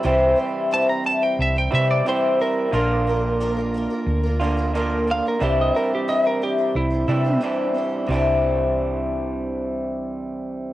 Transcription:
X:1
M:4/4
L:1/16
Q:1/4=89
K:Cmix
V:1 name="Electric slide guitar"
z4 a b a g e g e d c2 B2- | B8- B2 z4 f B | G _e B G e B G2 =E4 z4 | z16 |]
V:2 name="Twelve-string acoustic guitar"
[C,E,G,CEc]2 [G,CEc]2 [C,E,G,CEc] [G,CEc] [G,CEc] [G,CEc]2 [G,CEc] [G,CEc] [G,CEc] [C,E,G,CEc]2 [G,CEc]2 | [B,,F,B,DFB]2 [B,DFB]2 [B,,F,B,DFB] [B,DFB] [B,DFB] [B,DFB]2 [B,DFB] [B,DFB] [B,DFB] [B,,F,B,DFB]2 [B,DFB] [B,DFB] | [C,E,G,DEc]2 [G,DEc]2 [C,E,G,DEc] [G,DEc] [G,DEc] [G,DEc]2 [G,DEc] [G,DEc] [G,DEc] [C,E,G,DEc]2 [G,DEc]2 | [C,E,G,DEc]16 |]
V:3 name="Clean electric guitar" clef=bass
[C,E,G,CE]8- [C,E,G,CE]2 [C,E,G,CE]2 [C,E,G,CE]4 | [B,,D,B,DF]8- [B,,D,B,DF]2 [B,,D,B,DF]2 [B,,D,B,DF]4 | [C,E,G,DE]8- [C,E,G,DE]2 [C,E,G,DE]2 [C,E,G,DE]4 | [C,E,G,DE]16 |]
V:4 name="Fingered electric bass" clef=bass
C,,2 z6 C,,2 C,2 z4 | B,,,8 D,,8 | C,,2 z6 C,,2 C,2 z4 | C,,16 |]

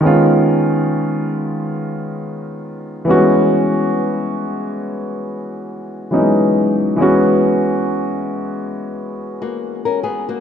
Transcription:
X:1
M:4/4
L:1/16
Q:"Swing 16ths" 1/4=69
K:C#dor
V:1 name="Nylon-string guitar"
z16 | z16 | z8 z3 [A,F]2 [CA] [B,G] [A,F] |]
V:2 name="Grand piano"
[D,G,B,C^E]12- [D,G,B,CE]2 [=E,=G,^G,B,CF]2- | [E,=G,^G,B,CF]12 [E,F,G,B,CD]4 | [E,G,B,CF]16 |]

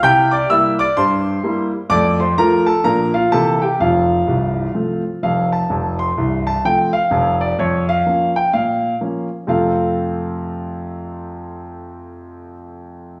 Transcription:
X:1
M:4/4
L:1/8
Q:"Swing" 1/4=127
K:F
V:1 name="Grand piano"
[gg'] [dd'] [ee'] [dd'] [cc']3 z | [dd'] [cc'] [Bb] [Aa] [Bb] [Ff] [Aa] [Gg] | [Ff]6 f a- | a c'2 a g f2 d |
_d f2 g f2 z2 | [F,,C,A,CFAf]8- | [F,,C,A,CFAf]8 |]
V:2 name="Grand piano" clef=bass
[C,E]2 [G,B,E]2 G,,2 [G,B,E]2 | [F,,A,]2 [F,A,F]2 [B,,F,B,D]2 [C,E,B,CE]2 | [F,,,F,,]2 [C,,,C,,]2 [F,A,C]2 [F,,,F,,]2 | [F,,,F,,]2 [C,,,C,,]2 [F,A,C]2 [F,,,F,,]2 |
F,,2 [F,B,_D]2 B,,2 [F,B,D]2 | z8 | z8 |]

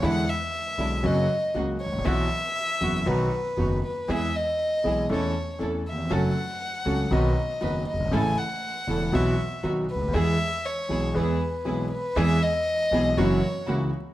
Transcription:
X:1
M:4/4
L:1/16
Q:1/4=119
K:E
V:1 name="Violin"
f2 e6 d4 z2 c2 | e8 B6 B2 | e2 d6 c4 z2 e2 | f8 d6 d2 |
g2 f6 e4 z2 B2 | e4 c4 B6 B2 | e2 d6 c4 z4 |]
V:2 name="String section"
[G,=DE]2 z4 [G,DE]2 [^A,CF]2 z2 [A,CF]2 z2 | [B,EF]2 z4 [B,EF]2 [B,DF]2 z2 [B,DF]2 z2 | [B,EG]2 z4 [B,EG]2 [CEA]2 z2 [CEA]2 z2 | [CFA]2 z4 [CFA]2 [DFB]2 z2 [DFB]2 z2 |
[CEA]2 z4 [CEA]2 [B,EF]2 z2 [B,DF]2 z2 | [B,EG]2 z4 [B,EG]2 [B,EG]2 z2 [B,EG]2 z2 | [B,EG]2 z4 [B,EG]2 [^A,EF]2 z2 [A,EF]2 z2 |]
V:3 name="Grand piano" clef=bass
[E,,=D,E,G,B,E]2 z4 [B,,,B,,D,G,B,E]2 [F,,C,F,^A,F]2 z2 [C,,C,F,A,F]2 z/2 G,,,/2 =A,,,/2 ^A,,,/2 | [B,,,B,,E,F,B,F]2 z4 [F,,,F,,E,F,B,F]2 [B,,,B,,D,F,B,F]2 z2 [F,,,F,,D,F,B,F]2 z2 | [E,,E,G,B,G]2 z4 [B,,,B,,E,G,B,G]2 [E,,E,A,CA]2 z2 [E,,E,A,CA]2 z/2 D,,/2 E,,/2 =F,,/2 | [F,,F,A,CA]2 z4 [C,,C,F,A,CA]2 [B,,,B,,D,F,B,F]2 z2 [F,,,F,,D,F,B,F]2 z/2 F,,,/2 =G,,,/2 ^G,,,/2 |
[A,,,A,,C,E,A,E]2 z4 [E,,,E,,C,E,A,E]2 [B,,,B,,E,F,B,F]2 z2 [B,,,B,,D,F,B,F]2 z/2 C,,/2 =D,,/2 ^D,,/2 | [E,,E,G,B,G]2 z4 [B,,,B,,E,G,B,G]2 [E,,E,G,B,G]2 z2 [B,,,B,,E,G,B,G]2 z2 | [E,,E,G,B,G]2 z4 [B,,,B,,E,G,B,G]2 [F,,E,F,^A,CF]2 z2 [C,,C,E,A,CF]2 z2 |]
V:4 name="Upright bass" clef=bass
E,,3/2 z4 z/2 B,,,3/2 z/2 F,,,3/2 z2 z/2 C,,3/2 z G,,,/2 A,,,/2 ^A,,,/2 | B,,,3/2 z4 z/2 F,,,3/2 z/2 B,,,3/2 z2 z/2 F,,,3/2 z2 z/2 | E,,3/2 z4 z/2 B,,,3/2 z/2 E,,3/2 z2 z/2 E,,3/2 z2 z/2 | F,,,3/2 z4 z/2 C,,3/2 z/2 B,,,3/2 z2 z/2 F,,,3/2 z F,,,/2 =G,,,/2 ^G,,,/2 |
A,,,3/2 z4 z/2 E,,,3/2 z/2 B,,,3/2 z2 z/2 B,,,3/2 z C,,/2 =D,,/2 ^D,,/2 | E,,3/2 z4 z/2 B,,,3/2 z/2 E,,3/2 z6 z/2 | E,,3/2 z4 z/2 B,,,3/2 z/2 F,,,3/2 z2 z/2 C,,3/2 z2 z/2 |]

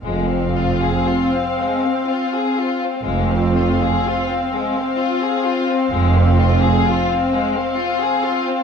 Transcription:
X:1
M:3/4
L:1/16
Q:1/4=63
K:Fm
V:1 name="Violin section"
f12 | f12- | f12 |]
V:2 name="Violin section"
A, C F A F C A, C F A F C | A, C F A F C A, C F A F C | A, C F A F C A, C F A F C |]
V:3 name="Viola section"
C12 | C12- | C12 |]
V:4 name="Cello section" clef=bass
F,,4 z8 | F,,4 z8 | F,,4 z8 |]
V:5 name="Double bass section" clef=bass
F,,,4 z8 | F,,,4 z8 | F,,,4 z8 |]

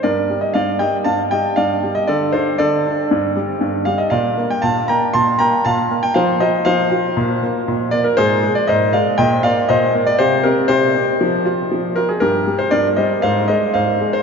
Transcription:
X:1
M:4/4
L:1/16
Q:1/4=118
K:Gm
V:1 name="Grand piano"
[Bd]3 e [df]2 [eg]2 [fa]2 [eg]2 [df]3 e | [Ad]2 [Ac]2 [Ad]8- [Ad]2 f e | [df]3 g [fa]2 [gb]2 [ac']2 [gb]2 [fa]3 g | [cf]2 [ce]2 [cf]8- [cf]2 d B |
[K:Ablyd] [Ac]3 d [ce]2 [df]2 [eg]2 [df]2 [ce]3 d | [Gc]2 [GB]2 [Gc]8- [Gc]2 B A | [GB]3 c [Bd]2 [ce]2 [cf]2 [ce]2 [cf]3 c |]
V:2 name="Grand piano" clef=bass
G,,2 G,2 G,,2 G,2 G,,2 G,2 G,,2 G,2 | D,2 D2 D,2 D2 G,,2 G,2 G,,2 G,2 | B,,2 B,2 B,,2 B,2 B,,2 B,2 B,,2 B,2 | F,2 F2 F,2 F2 B,,2 B,2 B,,2 B,2 |
[K:Ablyd] A,,2 A,2 A,,2 A,2 B,,2 B,2 B,,2 B,2 | C,2 C2 C,2 C2 F,2 F2 F,2 F2 | G,,2 G,2 G,,2 G,2 A,,2 A,2 A,,2 A,2 |]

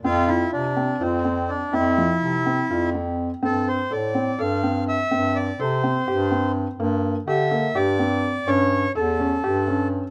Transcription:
X:1
M:7/8
L:1/8
Q:1/4=125
K:Gdor
V:1 name="Accordion"
F E D2 C2 D | E4- E z2 | A c d2 f2 e- | e d c4 z |
z2 e2 d3 | ^c2 A4 z |]
V:2 name="Felt piano"
C F2 C F C2 | C F,2 C F C2 | C2 A C A C2 | C2 A C G C2 |
B,2 G B, G C2 | ^C2 A C G C2 |]
V:3 name="Bass clarinet" clef=bass
F,,2 C,2 F,,3 | F,,2 C,2 F,,3 | G,,2 A,,2 G,,3 | G,,2 C,2 G,,3 |
G,,2 D,2 G,,3 | G,,2 E,,2 G,,3 |]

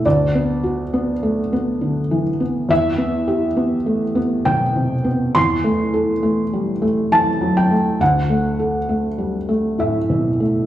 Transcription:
X:1
M:3/4
L:1/8
Q:1/4=68
K:Em
V:1 name="Felt piano"
d4- d z | e4 g2 | c'4 a g | f4 e2 |]
V:2 name="Felt piano"
(3D,, B, F (3B, A, B, (3D, E, B, | (3E,, B, G (3B, A, B, (3B,, C, B, | (3E,, A, A (3A, G, A, (3E, F, A, | (3D,, A, A (3A, G, A, (3A,, B,, A, |]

